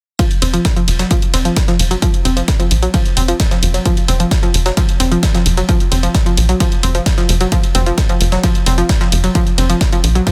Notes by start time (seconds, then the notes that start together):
0.19 F3, kick, closed hi-hat, ride
0.31 closed hi-hat, ride
0.42 F1 C4, snare, open hi-hat, ride
0.54 F3, closed hi-hat
0.65 kick, snare, closed hi-hat, ride
0.76 F3, closed hi-hat
0.88 F1, open hi-hat, ride
0.99 F#3, snare, closed hi-hat
1.11 F3, kick, closed hi-hat, ride
1.22 closed hi-hat
1.34 F1 C4, snare, open hi-hat, ride
1.45 F3, closed hi-hat
1.56 kick, snare, closed hi-hat, ride
1.68 F3, snare, closed hi-hat
1.79 F1, open hi-hat, ride
1.91 F#3, closed hi-hat, ride
2.02 F3, kick, closed hi-hat, ride
2.14 closed hi-hat
2.25 F1 C4, open hi-hat, ride
2.37 F3, closed hi-hat
2.48 kick, snare, closed hi-hat, ride
2.60 F3, closed hi-hat, ride
2.71 A#1, open hi-hat, ride
2.83 F#3, closed hi-hat
2.94 F3, kick, closed hi-hat, ride
3.05 closed hi-hat
3.17 F1 C4, open hi-hat, ride
3.28 F3, closed hi-hat
3.40 kick, snare, closed hi-hat, ride
3.51 F3, snare, closed hi-hat
3.63 F1, open hi-hat, ride
3.74 F#3, closed hi-hat, ride
3.85 F3, kick, closed hi-hat, ride
3.97 closed hi-hat, ride
4.08 F1 C4, snare, open hi-hat, ride
4.20 F3, closed hi-hat
4.31 kick, snare, closed hi-hat, ride
4.43 F3, closed hi-hat
4.54 F1, open hi-hat, ride
4.66 F#3, snare, closed hi-hat
4.77 F3, kick, closed hi-hat, ride
4.89 closed hi-hat
5.00 F1 C4, snare, open hi-hat, ride
5.12 F3, closed hi-hat
5.23 kick, snare, closed hi-hat, ride
5.34 F3, snare, closed hi-hat
5.46 F1, open hi-hat, ride
5.57 F#3, closed hi-hat, ride
5.69 F3, kick, closed hi-hat, ride
5.80 closed hi-hat
5.92 F1 C4, open hi-hat, ride
6.03 F3, closed hi-hat
6.15 kick, snare, closed hi-hat, ride
6.26 F3, closed hi-hat, ride
6.37 A#1, open hi-hat, ride
6.49 F#3, closed hi-hat
6.60 F3, kick, closed hi-hat, ride
6.72 closed hi-hat
6.83 F1 C4, open hi-hat, ride
6.95 F3, closed hi-hat
7.06 kick, snare, closed hi-hat, ride
7.18 F3, snare, closed hi-hat
7.29 F1, open hi-hat, ride
7.40 F#3, closed hi-hat, ride
7.52 F3, kick, closed hi-hat, ride
7.63 closed hi-hat, ride
7.75 F1 C4, snare, open hi-hat, ride
7.86 F3, closed hi-hat
7.98 kick, snare, closed hi-hat, ride
8.09 F3, closed hi-hat
8.21 F1, open hi-hat, ride
8.32 F#3, snare, closed hi-hat
8.43 F3, kick, closed hi-hat, ride
8.55 closed hi-hat
8.66 F1 C4, snare, open hi-hat, ride
8.78 F3, closed hi-hat
8.89 kick, snare, closed hi-hat, ride
9.01 F3, snare, closed hi-hat
9.12 F1, open hi-hat, ride
9.24 F#3, closed hi-hat, ride
9.35 F3, kick, closed hi-hat, ride
9.47 closed hi-hat
9.58 F1 C4, open hi-hat, ride
9.70 F3, closed hi-hat
9.81 kick, snare, closed hi-hat, ride
9.92 F3, closed hi-hat, ride
10.04 A#1, open hi-hat, ride
10.15 F#3, closed hi-hat
10.27 F3, kick, closed hi-hat, ride